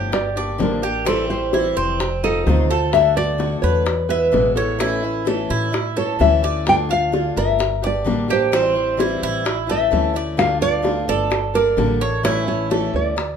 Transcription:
Already playing: G1 D3 F3 A3 D4 E4 G4 C#5
0.12 D5, muted steel-string acoustic guitar stroke, high bongo
0.36 A#3 D4 G4 D5, high bongo
0.58 A1 D3 F3 A#3 D4 G4 A#4, high bongo, low bongo
0.82 A#3 D4 G4, high bongo
1.05 E3 G3 C4 E4 A4, high bongo
1.29 G3 C4 E4 C5
1.53 E3 G3 C4 E4, high bongo
1.76 F1 C4, high bongo
2.00 muted steel-string acoustic guitar stroke, high bongo
2.24 A3 C4 D#4 F4 A4, high bongo
2.46 D2 C3 D#3 A3 C4 F4 C5, high bongo, low bongo
2.70 A3 C4 F4 A4, high bongo
2.93 D3 A3 D4 F#4 E5, high bongo
3.16 A3 D4 F#4 D5
3.38 D3 A3 D4 F#4, high bongo
3.62 E2 B4 C#5, high bongo
3.86 muted steel-string acoustic guitar stroke, high bongo
4.09 G#3 B3 E4 B4 E5, high bongo
4.32 A1 B2 E3 G#3 B3 E4, high bongo, low bongo
4.56 G#3 B3 E4 A4 C#5, high bongo
4.79 E3 A3 C#4 E4, high bongo
5.03 A3 C#4 E4
5.25 E3 A3 C#4 E4 A4, high bongo
5.50 A2 E4, high bongo
5.72 muted steel-string acoustic guitar stroke, high bongo
5.96 A3 C#4 E4 A4 C#5, high bongo
6.19 D2 E3 A3 C#4 E4 E5, high bongo, low bongo
6.43 A3 C#4 E4 D5, high bongo
6.66 D3 A3 D4 F4 G5, high bongo
6.89 A3 D4 F4 F5
7.12 D3 A3 D4 F4, high bongo
7.37 G1 A#4 E5, high bongo
7.59 muted steel-string acoustic guitar stroke, high bongo
7.82 A#3 D4 G4 D5, high bongo
7.87 D5
8.04 A1 D3 G3 A#3 D4 G4, high bongo, low bongo
8.28 A#3 D4 G4, high bongo
8.32 C5
8.52 E3 G3 C4 E4, high bongo
8.75 G3 C4 E4
8.97 E3 G3 C4 E4, high bongo
9.23 A1 E4, high bongo
9.45 muted steel-string acoustic guitar stroke, high bongo
9.67 A3 C#4 E4 A4 E5, high bongo
9.91 D2 E3 A3 C#4 E4, high bongo, low bongo
10.13 A3 C#4 E4 D5, high bongo
10.37 D3 A3 D4 F4 F5, high bongo
10.61 A3 D4 F4 D5 F5
10.82 D3 A3 D4 F4, high bongo
11.08 G1 A4 D5, high bongo
11.30 muted steel-string acoustic guitar stroke, high bongo
11.54 A#3 D4 A4 A#4 D5, high bongo
11.77 A1 D3 G3 A#3 D4 A4, high bongo, low bongo
12.01 A#3 D4 A4 C#5, high bongo
12.23 E3 A3 C#4 E4 C#5, high bongo
12.47 A3 C#4 E4 C#5
12.70 E3 A3 C#4 E4 A4, high bongo
12.94 D2 D5, high bongo
13.16 muted steel-string acoustic guitar stroke, high bongo

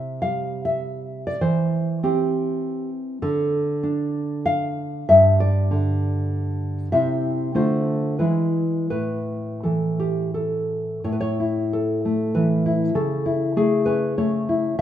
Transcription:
Already playing: C3 E5
0.22 G3 F5
0.65 E5
1.27 D5
1.41 E3 C5
2.03 C4 G4
3.22 D3 A4
3.83 D4
4.46 F5
5.09 G2 E5
5.40 D5
5.71 D3
6.92 C3 C4 E4 E5
7.55 D3 A3 F4 C5
8.19 E3 G#3 E4 B4
8.90 A2 B4
9.63 E3 A4
9.99 G4
10.34 A4
11.04 A2 C#5
11.12 B4
11.21 C#5
11.40 E4
11.73 A4
12.05 A3
12.35 E3 B4
12.66 E4
12.95 C#3 A4
13.26 E4
13.56 A3 G#4
13.86 C#4 B4
14.18 A3 C#5
14.49 E4

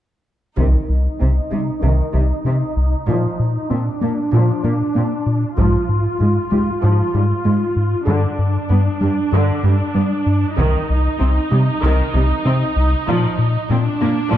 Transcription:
0.57 C2 C3 D#3 D#4, taiko
0.89 C2
1.20 C2 C3 C4
1.51 C3 G3
1.83 C2 C3 D#3
2.14 C2 C3 G3
2.45 C3 C4
2.76 C2
3.08 A#2 F3
3.39 A#2
3.70 A#2 C4 D4
4.01 A#2 A#3
4.33 A#2 F3
4.64 A#2 A#3
4.95 A#2 A#3 C4
5.26 A#2
5.58 G#2 F3 F4, taiko
5.89 G#2
6.20 G#2 G#3
6.52 G#2 G#3 G4, taiko
6.82 G#2 F3
7.13 G#2 G3
7.45 G#2 G#3
7.76 G#2
8.07 G2 D3 D4
8.39 G2
8.70 G2 B3
9.01 G2 G3
9.32 G2 D3
9.63 G2 G3
9.95 G2 G3 B3
10.26 G2
10.58 C2 C3 D#3 D#4, taiko
10.90 C2
11.20 C2 C3 C4
11.52 C3 G3
11.82 C2 C3 D#3
12.14 C2 C3 G3
12.45 C3 C4
12.76 C2
13.08 A#2 F3
13.38 A#2
13.70 A#2 C4 D4
14.01 A#2 A#3
14.33 A#2 F3

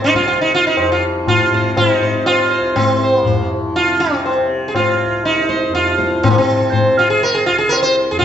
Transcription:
Already playing: C2 F2 C3
0.02 D#4, tabla na
0.13 C2 F4, tabla ke
0.27 F4, tabla na
0.41 D#4
0.55 F4
0.67 D#4
0.76 F2, tabla na
0.92 F4
1.27 F4, tabla na, tabla ge
1.35 C3
1.52 C5, tabla ge
1.77 E4, tabla na, tabla ge
1.92 D#4
1.97 C3
2.01 C5, tabla ge
2.26 F4, tabla na
2.50 C5
2.60 C2
2.76 C4, tabla na, tabla ge
3.03 C5
3.21 F2 A#3
3.26 C5, tabla tin, tabla ge
3.76 F4, tabla te
3.82 C3
4.00 C4, tabla te
4.25 C5, tabla na
4.41 C3
4.68 G#4
4.75 F4, tabla na, tabla ge
5.05 C2
5.24 D#4, tabla te
5.37 tabla te
5.49 C5, tabla ke
5.62 tabla te
5.68 F2
5.74 F4, tabla te
5.87 tabla te
5.98 C5, tabla ke
6.12 tabla te
6.23 C3 C4, tabla na, tabla ge
6.30 A#3
6.38 C4
6.72 C5, tabla tin, tabla ge
6.90 C3
6.99 F4
7.10 G#4
7.22 A#4, tabla na
7.35 G#4
7.46 F4
7.51 C2
7.58 G#4
7.69 A#4, tabla na
7.83 C5
8.11 F2 G#4
8.19 F4 C5, tabla na, tabla ge

